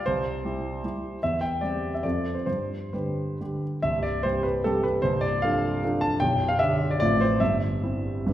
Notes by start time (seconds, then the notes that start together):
0.06 C2 C5
0.45 G3 E4 G4
0.84 G3 E4 G4
1.23 E2 E5
1.41 G5
1.61 G3 C4 G4 D5
1.94 E5
2.03 F2 F3 C4 A4 D5
2.34 C5
2.46 G2 C5
2.93 D3 G3 G4 B4
3.41 D3 G3 G4
3.82 C1 C2 E5
4.03 D5
4.23 C3 G3 G4 C5
4.43 B4
4.64 C3 G3 G4 A4
4.83 B4
5.02 C1 C2 C5
5.21 D5
5.42 F3 D4 A4 F5
5.84 F3 D4 A4
6.01 A5
6.20 B0 B1 G5
6.48 F5
6.59 D3 D4 G4 E5
6.91 D5
7.00 A1 A2 F3 C4 F4 D5
7.21 C5
7.40 G1 G2 E5
7.82 G3 C4 E4
8.26 G1 G2 G3 B3 D4